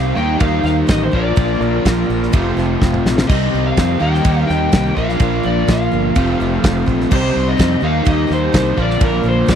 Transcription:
Already playing: C2 C3 D#3 G3 C4 D#4 G4 C5 F5
0.15 D#2 D#3 G3 A#3 C4 D#4 G4 C5 G5
0.40 D#2 D#3 A#3 C4 G4 F5, kick, ride bell
0.63 D#2 A#3 C4 G4 F5, snare
0.87 A1 D#3 A#3 C4 G4 D#5, kick, snare, ride bell
1.03 C5
1.11 A#1 A#2 F3 A#3 D4 F4 A#4 D5, kick
1.36 A#1 A#2 F3 A#3 D4 F4, kick, ride bell
1.60 A#1 A#3 D4 F4
1.85 A#1 F3 A#3 D4 F4, kick, snare, ride bell
2.09 A#1 A#3 D4 F4
2.23 snare
2.32 F1 F2 C3 F3 A3 C4 F4 A4 C5, kick, ride bell
2.57 F1 F3 A3 C4 F4, snare
2.81 F1 F3 A3 C4 F4, kick, snare
2.94 mid tom
3.05 A#1 F3 A3 C4 F4, snare
3.18 snare
3.27 C2 C3 G3 C4 D#4 G4 C5 D#5, kick, crash
3.31 D#3 C4 D#4 G4
3.54 C2 C4 D#4 G4
3.66 F5
3.77 F2 D#3 C4 D#4 G4, kick, snare, ride bell
3.99 D#2 D#3 G3 A#3 C4 D#4 G4 C5 G5
4.15 snare
4.25 D#2 D#3 A#3 C4 G4, kick, ride bell
4.48 D#2 A#3 C4 G4 G5, snare
4.72 C2 D#3 A#3 C4 G4, kick, snare, ride bell
4.96 A#1 A#2 F3 A#3 D4 F4 A#4 D5 F5, kick
5.09 snare
5.20 A#1 A#2 F3 A#3 D4 F4, kick, ride bell
5.44 A#1 A#3 D4 F4 D5
5.68 A#1 F3 A#3 D4 F4 F5, kick, snare, ride bell
5.92 G1 A#3 D4 F4
6.15 F1 F2 C3 F3 A3 C4 F4 A4 C5, kick, ride bell
6.40 F1 F3 A3 C4 F4
6.63 F1 F3 A3 C4 F4, kick, snare, ride bell
6.86 A#1 F3 A3 C4 F4, kick
7.01 snare
7.10 C2 C3 D#3 G3 C4 D#4 G4 C5, kick, crash
7.34 C2 C4 D#4 G4
7.49 D#5
7.57 F2 D#3 C4 D#4 G4, kick, snare, ride bell
7.80 D#2 D#3 G3 A#3 C4 D#4 G4 C5
7.85 F5
8.05 D#2 D#3 A#3 C4 G4, kick, ride bell
8.09 D#5
8.27 D#2 A#3 C4 G4, snare
8.33 C5
8.52 C2 D#3 A#3 C4 G4, kick, snare, ride bell
8.73 A#2 D3 D4 F4 A#4
8.77 A#1 F3 A#3 D4 F4, kick
8.83 D5
8.90 snare
9.00 A#1 A#2 F3 A#3 D4 F4 A#4, kick, ride bell
9.24 A#1 A#3 D4 F4
9.28 C5
9.46 A#1 F3 A#3 D4 F4, kick, snare, ride bell
9.51 D5

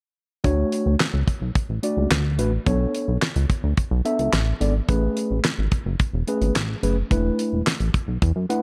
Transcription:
0.44 D2 A3 D4 F#4 C#5, kick, closed hi-hat
0.72 closed hi-hat
0.86 D2
1.00 snare, clap, closed hi-hat
1.14 C#2
1.28 kick, closed hi-hat
1.41 B1
1.55 kick, closed hi-hat
1.69 A1
1.83 A3 D4 F#4 D5, closed hi-hat
1.97 C#2
2.11 D2, snare, clap, closed hi-hat
2.38 A1 A3 D4 F#4 B4, closed hi-hat
2.66 B1 B3 D4 A4 C#5, kick, closed hi-hat
2.95 closed hi-hat
3.08 B1
3.22 snare, clap, closed hi-hat
3.36 C#2, closed hi-hat
3.50 kick, closed hi-hat
3.64 D2
3.77 kick, closed hi-hat
3.91 B1
4.05 B3 D4 A4 E5, closed hi-hat
4.19 C#2, closed hi-hat
4.33 A1, snare, clap, closed hi-hat
4.60 G#1 B3 D4 A4 D5, closed hi-hat
4.88 A1 A3 C#4 G#4 B4, kick, closed hi-hat
5.17 closed hi-hat
5.30 A1
5.44 snare, clap, closed hi-hat
5.58 G#1
5.72 kick, closed hi-hat
5.86 F#1
6.00 kick, closed hi-hat
6.13 E1
6.28 A3 C#4 G#4 B4, closed hi-hat
6.41 G#1, closed hi-hat
6.55 A1, snare, clap, closed hi-hat
6.83 F#1 A3 C#4 G#4 B4, closed hi-hat
7.11 E1 A3 D4 E4 B4, kick, closed hi-hat
7.39 closed hi-hat
7.52 E1
7.66 snare, clap, closed hi-hat
7.80 A1, closed hi-hat
7.94 kick, closed hi-hat
8.08 B1
8.22 E2, kick, closed hi-hat
8.36 F#2
8.49 A3 D4 E4 B4 F#5, closed hi-hat

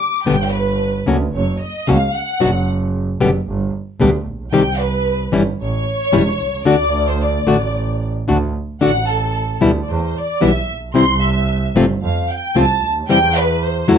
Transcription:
Already playing: D6
0.25 G1 B2 D3 G3 B3 G4 G5
0.52 B4
1.06 D2 C#3 F#3 A#3 C#4 F#4
1.34 F#1 C#5
1.62 D#5
1.87 C#2 C#3 F#3 A#3 C#4 F#4 F5
2.13 F#5
2.40 F#1 B2 F#3 B3 D4 F#4
3.20 F#1 B2 D3 G3 B3 G4
3.47 G1
4.00 D2 B2 D3 G3 B3 G4
4.27 A#1
4.53 C2 C3 D#3 G3 C4 G4 G5
4.80 B4
5.32 G1 E3 G3 C#4 E4
5.60 A1 C#5
6.12 E1 E3 G3 C#4 E4
6.40 C2
6.65 D2 D3 A3 D4 F#4 D5
7.08 C5
7.21 D5
7.46 A1 D3 A3 D4 F#4
8.28 D2 D3 A3 D4 F#4
8.81 A1 D3 A3 D4 F#4 F#5
9.08 A4
9.61 D2 B2 E3 G3 B3 E4
9.82 D5
9.89 E2 C5
10.17 D5
10.41 B1 B2 E3 G3 B3 E4 E5
10.69 A#1
10.94 C2 C3 E3 G3 C4 E4 C6
11.22 E5
11.76 G1 C3 F3 A3 C4 F4
12.02 F2 F5
12.30 G5
12.55 C2 C3 F3 A3 C4 F4 A5
12.82 D2
13.09 E2 C3 E3 G3 C4 E4 G5
13.37 B4
13.63 C5
13.88 E2 D3 F#3 A3 E4 F#4

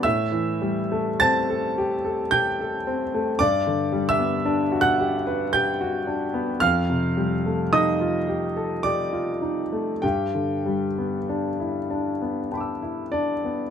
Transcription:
0.03 A2 E5 E6
0.32 E3
0.61 G3
0.92 A3
1.20 C4 A5 A6
1.50 A4
1.78 G4
2.05 A4
2.31 G4 G5 G6
2.61 A4
2.87 C4
3.14 A3
3.39 G2 D5 D6
3.67 D3
3.92 G3
4.09 E5 E6
4.19 B3
4.46 D4
4.72 F#4
4.81 F#5 F#6
5.00 G4
5.27 B4
5.53 G4 G5 G6
5.81 F#4
6.07 D4
6.34 B3
6.60 F2 F5 F6
6.90 C3
7.17 G3
7.46 A3
7.73 D#4 D#5 D#6
8.01 F4
8.28 G4
8.57 A4
8.83 G4 D5 D6
9.13 F4
9.42 D#4
9.73 A3
10.02 G2 G4 G5
10.35 D3
10.66 G3
10.98 B3
11.29 D4
11.60 E4
11.90 D4
12.22 B3
12.51 D4 G5 B5
12.57 D6 E6
12.82 E4
13.12 D4 D5
13.45 B3

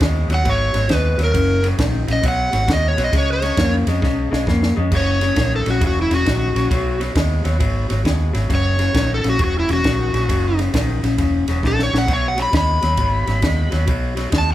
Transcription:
0.01 D#2 B2 G#3, kick, snare, ride
0.28 D#2 B2 F#3, snare, ride
0.34 F#5
0.45 G#1 B2 F#3, kick, ride
0.49 C#5
0.74 G#1 B2 F#3, snare, ride
0.89 D#2 B2 G#3, kick, snare, ride
0.94 B4
1.18 D#2 B2 F#3, snare, ride
1.24 A#4
1.34 F#1 F#2 C#3, kick, ride
1.63 F#2 C#3, snare, ride
1.79 A#1 F#2 D#3, kick, snare, ride
2.07 A#1 F#2 C#3, snare, ride
2.13 D#5
2.23 B1 B2 F#3, kick, snare, ride
2.28 F#5
2.52 G#1 B2 F#3, snare, ride
2.68 D#2 B2 G#3, kick, snare, ride
2.73 D#5
2.88 C#5
2.97 B1 B2 F#3, snare, ride
3.04 D#5
3.13 C#2 C#3 G#3, kick, snare, ride
3.18 C#5
3.33 C#5
3.42 C#3 G#3, snare, ride
3.57 F2 C#3 A#3, kick, snare, ride
3.87 F2 C#3 G#3, snare, ride
4.02 B1 C#3 G#3, kick, snare
4.31 B1 C#3 G#3, snare
4.47 F2 C#3 A#3, kick, snare
4.63 snare
4.76 F2 C#3 G#3
4.92 F#1 F#2 C#3, kick, crash
4.97 C#5
5.21 F#2 C#3, snare, ride
5.36 A#1 F#2 D#3, kick, snare, ride
5.56 A4
5.65 A#1 F#2 C#3, snare, ride
5.70 F#4
5.81 E1 F#2 C#3, kick, ride
5.87 F#4
6.02 E4
6.10 E1 F#2 C#3 F#4, snare, ride
6.26 A#1 F#2 D#3, kick, snare, ride
6.55 A#1 F#2 C#3, snare, ride
6.71 B1 B2 F#3, kick, snare, ride
7.00 B2 F#3, snare, ride
7.15 D#2 B2 G#3, kick, snare, ride
7.44 D#2 B2 F#3, snare, ride
7.59 G#1 B2 F#3, kick, ride
7.89 G#1 B2 F#3, snare, ride
8.05 D#2 B2 G#3, kick, snare, ride
8.33 G#1 B2 F#3, snare, ride
8.49 F#1 F#2 C#3, kick, snare, ride
8.55 C#5
8.79 F#2 C#3, snare, ride
8.94 A#1 F#2 D#3, kick, snare, ride
9.14 A4
9.24 A#1 F#2 C#3, snare, ride
9.29 F#4
9.39 E1 F#2 C#3, kick, ride
9.44 F#4
9.60 E4
9.68 E1 F#2 C#3, snare, ride
9.73 F#4
9.83 A#1 F#2 D#3, kick, snare, ride
10.13 A#1 F#2 C#3, snare, ride
10.29 F#1 F#2 C#3, kick, snare, ride
10.59 F#2 C#3, snare, ride
10.73 A#1 F#2 D#3, kick, snare, ride
11.03 A#1 F#2 C#3, snare, ride
11.18 E1 F#2 C#3, kick, snare, ride
11.48 E1 F#2 C#3, snare, ride
11.63 A#1 F#2 D#3, kick, snare
11.67 A4
11.79 C#5, snare
11.93 A#1 F#2 C#3, snare
11.98 F#5
12.08 B1 B2 F#3, kick, snare, ride
12.13 C#5
12.28 F#5
12.37 B2 F#3, snare, ride
12.42 B5
12.53 D#2 B2 G#3, kick, snare, ride
12.57 B5
12.82 D#2 B2 F#3, snare, ride
12.97 G#1 B2 F#3, kick, ride
13.27 G#1 B2 F#3, snare, ride
13.42 D#2 B2 G#3, kick, snare, ride
13.71 D#2 B2 F#3, snare, ride
13.87 B1 B2 F#3, kick, ride
14.16 B2 F#3, snare, ride
14.32 D#2 B2 G#3, kick, snare, ride
14.38 A5

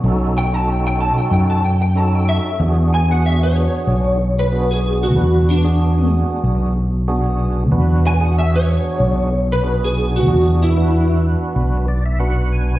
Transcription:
0.04 B1 C#4 D#4 F#4 A4
0.38 G5
0.53 C#4 D#4 F#4 A4 A5
0.69 G5
0.87 G5
1.01 A5
1.18 G5
1.31 F#2 G5
1.50 A5
1.65 G5
1.82 G5
1.95 C#4 D#4 F#4 A4 A5
2.15 G5
2.29 E5
2.60 E2 B3 D4 F#4 G#4
2.94 G#5
3.08 B3 D4 F#4 G#4 F#5
3.26 E5
3.43 C#5
3.87 B1
4.39 B4
4.52 B3 D4 F#4 G#4
4.71 G#4
5.03 F#4
5.16 E2 B3 D4 F#4 B4
5.50 D4
5.64 B3 D4 F#4 G#4
6.44 B1
7.08 B3 D4 F#4 G#4
7.71 E2 B3 D4 F#4 B4
8.07 G#5
8.20 B3 D4 F#4 G#4 F#5
8.38 E5
8.56 C#5
9.00 B1
9.52 B4
9.63 B3 D4 F#4 G#4
9.84 G#4
10.16 F#4
10.28 E2 B3 D4 F#4 G#4
10.63 E4
10.77 B3 D4 F#4 B4
11.56 B1
11.88 D5
12.06 E5
12.19 B3 D4 F#4 B4 F#5
12.52 G#5

